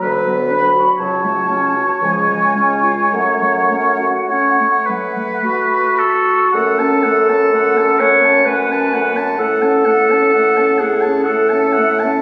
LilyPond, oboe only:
\new Staff \with { instrumentName = "Oboe" } { \time 3/4 \key fis \minor \tempo 4 = 60 b'8 r8 cis''2~ | cis''4 cis''8 b'4 a'8 | fis''16 a''16 fis''16 a''16 fis''16 a''16 fis''16 a''16 fis''16 a''16 fis''16 a''16 | fis''16 a''16 fis''16 a''16 fis''16 a''16 fis''16 a''16 fis''16 a''16 fis''16 a''16 | }